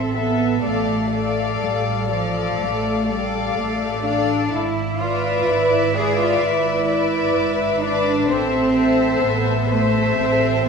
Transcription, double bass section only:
0.00 0.53 A1 soft
0.64 1.52 A1 soft
1.62 2.48 A1 soft
2.59 3.45 A1 soft
3.57 4.41 A1 soft
4.52 5.36 G#1 medium
5.47 6.31 G#1 soft
6.41 7.23 G#1 medium
7.35 8.17 G#1 medium
8.28 9.10 A1 medium
9.21 10.05 A1 soft
10.16 10.69 A1 medium

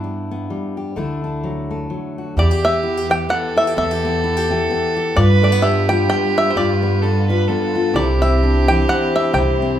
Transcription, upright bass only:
0.00 0.47 G2 medium
0.97 1.87 D2 medium
2.37 3.26 E2 medium
3.77 4.66 E2 medium
5.17 6.06 G2 loud
6.55 7.44 G2 medium
7.94 8.83 C2 loud
9.34 9.79 C2 medium

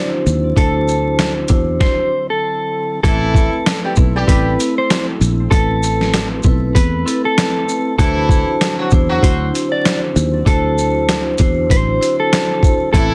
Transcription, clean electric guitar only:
0.57 1.33 A4 loud
1.81 2.27 C5 medium
2.30 3.00 A4 medium
3.03 3.80 A4 loud
4.28 4.74 B4 medium
4.78 5.05 C5 medium
5.51 6.27 A4 loud
6.75 7.21 B4 medium
7.25 7.95 A4 medium
7.98 8.75 A4 loud
9.23 9.69 C5 medium
9.72 10.00 D5 medium
10.47 11.23 A4 loud
11.71 12.17 C5 medium
12.20 12.90 A4 medium
12.93 13.14 A4 loud

